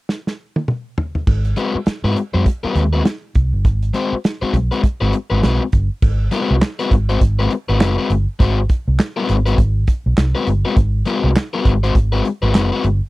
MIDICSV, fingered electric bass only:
0, 0, Header, 1, 3, 480
1, 0, Start_track
1, 0, Tempo, 593472
1, 1030, Time_signature, 4, 2, 24, 8
1, 10589, End_track
2, 0, Start_track
2, 0, Title_t, "Fingered electric bass"
2, 0, Program_c, 0, 33
2, 1030, Note_on_c, 0, 32, 95
2, 1233, Note_off_c, 0, 32, 0
2, 1652, Note_on_c, 0, 44, 105
2, 1734, Note_off_c, 0, 44, 0
2, 1895, Note_on_c, 0, 42, 76
2, 1976, Note_off_c, 0, 42, 0
2, 2227, Note_on_c, 0, 39, 88
2, 2431, Note_off_c, 0, 39, 0
2, 2715, Note_on_c, 0, 36, 84
2, 2835, Note_off_c, 0, 36, 0
2, 2852, Note_on_c, 0, 31, 90
2, 2951, Note_off_c, 0, 31, 0
2, 2951, Note_on_c, 0, 32, 101
2, 3153, Note_off_c, 0, 32, 0
2, 3668, Note_on_c, 0, 35, 94
2, 3791, Note_off_c, 0, 35, 0
2, 4056, Note_on_c, 0, 32, 76
2, 4137, Note_off_c, 0, 32, 0
2, 4297, Note_on_c, 0, 32, 81
2, 4377, Note_off_c, 0, 32, 0
2, 4396, Note_on_c, 0, 35, 94
2, 4516, Note_off_c, 0, 35, 0
2, 4635, Note_on_c, 0, 31, 82
2, 4755, Note_off_c, 0, 31, 0
2, 4873, Note_on_c, 0, 32, 92
2, 5075, Note_off_c, 0, 32, 0
2, 5262, Note_on_c, 0, 36, 85
2, 5340, Note_off_c, 0, 36, 0
2, 5592, Note_on_c, 0, 32, 85
2, 5794, Note_off_c, 0, 32, 0
2, 5834, Note_on_c, 0, 32, 88
2, 6035, Note_off_c, 0, 32, 0
2, 6220, Note_on_c, 0, 32, 80
2, 6318, Note_off_c, 0, 32, 0
2, 6318, Note_on_c, 0, 30, 104
2, 6437, Note_off_c, 0, 30, 0
2, 6552, Note_on_c, 0, 31, 83
2, 6673, Note_off_c, 0, 31, 0
2, 6796, Note_on_c, 0, 32, 95
2, 6996, Note_off_c, 0, 32, 0
2, 7179, Note_on_c, 0, 36, 91
2, 7258, Note_off_c, 0, 36, 0
2, 7517, Note_on_c, 0, 32, 89
2, 7717, Note_off_c, 0, 32, 0
2, 7749, Note_on_c, 0, 32, 104
2, 7952, Note_off_c, 0, 32, 0
2, 8137, Note_on_c, 0, 35, 88
2, 8217, Note_off_c, 0, 35, 0
2, 8231, Note_on_c, 0, 36, 97
2, 8352, Note_off_c, 0, 36, 0
2, 8470, Note_on_c, 0, 31, 78
2, 8591, Note_off_c, 0, 31, 0
2, 8708, Note_on_c, 0, 32, 100
2, 8911, Note_off_c, 0, 32, 0
2, 9090, Note_on_c, 0, 36, 95
2, 9173, Note_off_c, 0, 36, 0
2, 9426, Note_on_c, 0, 32, 82
2, 9629, Note_off_c, 0, 32, 0
2, 9664, Note_on_c, 0, 32, 95
2, 9868, Note_off_c, 0, 32, 0
2, 10049, Note_on_c, 0, 32, 91
2, 10146, Note_off_c, 0, 32, 0
2, 10146, Note_on_c, 0, 30, 84
2, 10268, Note_off_c, 0, 30, 0
2, 10388, Note_on_c, 0, 31, 91
2, 10509, Note_off_c, 0, 31, 0
2, 10589, End_track
3, 0, Start_track
3, 0, Title_t, "Muted fingered electric bass strokes"
3, 1416, Note_on_c, 9, 29, 43
3, 1497, Note_off_c, 9, 29, 0
3, 1513, Note_on_c, 9, 29, 41
3, 1594, Note_off_c, 9, 29, 0
3, 2138, Note_on_c, 9, 29, 45
3, 2219, Note_off_c, 9, 29, 0
3, 3336, Note_on_c, 9, 29, 41
3, 3417, Note_off_c, 9, 29, 0
3, 3575, Note_on_c, 9, 29, 48
3, 3656, Note_off_c, 9, 29, 0
3, 3912, Note_on_c, 9, 29, 46
3, 3993, Note_off_c, 9, 29, 0
3, 10589, End_track
0, 0, End_of_file